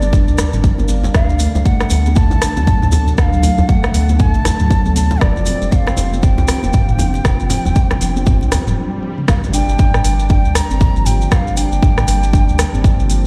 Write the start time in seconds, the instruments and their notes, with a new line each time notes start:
Already playing: analog synth bass G1, ambient pad G3 D4 A#4, bansuri D5
0.02 high conga, maracas
0.12 handpan D4, kick, mid tom, high conga, djembe tone, low conga, maracas
0.28 analog synth bass D2, handpan G3, muted conga, maracas
0.38 cross-stick, djembe tone, djembe bass, maracas
0.53 analog synth bass G1, handpan C4, mid tom, low conga, maracas
0.64 handpan A#3, kick, muted conga, maracas
0.78 analog synth bass G1, handpan A#3, djembe tone, high conga, maracas
0.88 high conga, maracas
1.04 handpan G3, djembe slap, muted conga, djembe tone, maracas
1.14 analog synth bass D2, handpan D3, ambient pad F#3 A4, bansuri F5, kick, cross-stick, maracas
1.29 djembe tone, maracas
1.39 handpan A3, open hi-hat, muted conga, maracas
1.55 analog synth bass D2, djembe tone, low conga, maracas
1.65 handpan A3, bansuri F#5, kick, maracas
1.80 cross-stick, muted conga, djembe slap, maracas
1.90 analog synth bass D2, handpan D3, open hi-hat, high conga, djembe tone, maracas
2.06 high conga, maracas
2.15 handpan A3, bansuri A5, kick, djembe tone, maracas
2.31 analog synth bass A1, handpan D3, djembe slap, muted conga, djembe bass, maracas
2.42 cross-stick, open hi-hat, maracas
2.57 analog synth bass D2, handpan F#3, djembe tone, high conga, maracas
2.67 kick, mid tom, muted conga, high conga, maracas
2.82 analog synth bass D2, handpan C3, mid tom, djembe tone, maracas
2.92 bansuri A5, open hi-hat, djembe slap, high conga, djembe bass, maracas
3.07 handpan A2, muted conga, maracas
3.18 analog synth bass D2, handpan D3, bansuri F#5, kick, cross-stick, djembe tone, maracas
3.23 bansuri F5
3.33 maracas
3.43 handpan A3, open hi-hat, djembe slap, muted conga, djembe tone, maracas
3.58 analog synth bass D2, low conga, djembe bass, maracas
3.69 handpan A3, bansuri F#5, kick, maracas
3.83 cross-stick, muted conga, djembe tone, low conga, maracas
3.94 analog synth bass D2, handpan D3, open hi-hat, high conga, maracas
4.09 djembe tone, high conga, maracas
4.19 handpan A3, bansuri A5, kick, mid tom, high conga, low conga, maracas
4.34 analog synth bass A1, handpan D3, muted conga, maracas
4.45 cross-stick, open hi-hat, djembe tone, djembe bass, maracas
4.59 analog synth bass D2, handpan F#3, mid tom, low conga, maracas
4.70 kick, muted conga, djembe tone, maracas
4.85 analog synth bass D2, handpan C3, high conga, maracas
4.96 bansuri A5, open hi-hat, high conga, maracas
5.11 handpan A2, djembe slap, muted conga, djembe tone, maracas
5.21 analog synth bass F1, ambient pad F3 C4 G4, handpan F3, bansuri D5, kick, cross-stick, maracas
5.36 djembe tone, maracas
5.46 handpan C4, open hi-hat, muted conga, maracas
5.62 analog synth bass F1, low conga, maracas
5.72 handpan C4, bansuri F#5, kick, djembe tone, maracas
5.76 bansuri F5
5.87 cross-stick, djembe slap, muted conga, maracas
5.97 analog synth bass F1, handpan F3, open hi-hat, djembe tone, high conga, maracas
6.13 high conga, maracas
6.23 handpan C4, bansuri G5, kick, maracas
6.38 analog synth bass C2, handpan F3, muted conga, djembe slap, djembe tone, djembe bass, maracas
6.48 cross-stick, open hi-hat, maracas
6.63 analog synth bass F1, handpan A#3, high conga, djembe tone, maracas
6.73 kick, mid tom, muted conga, high conga, maracas
6.88 analog synth bass F1, handpan D3, mid tom, maracas
6.99 open hi-hat, djembe slap, djembe tone, high conga, djembe bass, maracas
7.14 handpan C3, muted conga, maracas
7.24 analog synth bass F1, handpan F3, ambient pad D4, kick, cross-stick, djembe tone, maracas
7.40 maracas
7.50 handpan C4, mid tom, open hi-hat, djembe slap, muted conga, maracas
7.65 analog synth bass F1, djembe tone, low conga, djembe bass, maracas
7.76 handpan C4, kick, maracas
7.91 cross-stick, muted conga, djembe slap, djembe tone, low conga, maracas
8.01 analog synth bass F1, handpan F3, open hi-hat, high conga, maracas
8.16 high conga, maracas
8.26 handpan C4, kick, mid tom, swell, djembe tone, high conga, low conga, maracas
8.41 analog synth bass C2, handpan F3, muted conga, maracas
8.52 handpan C4, cross-stick, open hi-hat, djembe slap, high conga, djembe tone, djembe bass, maracas
8.67 analog synth bass F1, handpan F3, mid tom, low conga, maracas
9.03 high tom
9.18 mid tom
9.28 analog synth bass G1, ambient pad D3 A#3 G4, handpan G3, bansuri F5, kick, cross-stick, impact, maracas
9.44 maracas
9.54 handpan D4, bansuri G5, open hi-hat, maracas
9.69 analog synth bass G1, maracas
9.79 handpan D4, kick, maracas
9.94 cross-stick, mid tom, maracas
10.04 analog synth bass G1, handpan G3, open hi-hat, maracas
10.19 maracas
10.29 handpan D4, bansuri G5, kick, maracas
10.45 analog synth bass D2, handpan G3, maracas
10.55 bansuri A#5, cross-stick, open hi-hat, maracas
10.70 analog synth bass G1, handpan C4, maracas
10.81 kick, maracas
10.96 analog synth bass G1, handpan F3, maracas
11.06 bansuri G5, mid tom, open hi-hat, maracas
11.21 handpan D3, maracas
11.31 analog synth bass G1, handpan G3, bansuri F#5, kick, cross-stick, maracas
11.36 bansuri F5
11.47 maracas
11.57 handpan D4, bansuri G5, open hi-hat, maracas
11.72 analog synth bass G1, maracas
11.83 handpan D4, kick, maracas
11.98 cross-stick, mid tom, maracas
12.08 analog synth bass G1, handpan G3, open hi-hat, maracas
12.23 maracas
12.33 handpan D4, kick, maracas
12.49 analog synth bass D2, handpan G3, maracas
12.59 cross-stick, open hi-hat, maracas
12.74 analog synth bass G1, handpan C4, mid tom, maracas
12.84 kick, mid tom, maracas
12.99 analog synth bass G1, handpan F3, maracas
13.10 open hi-hat, maracas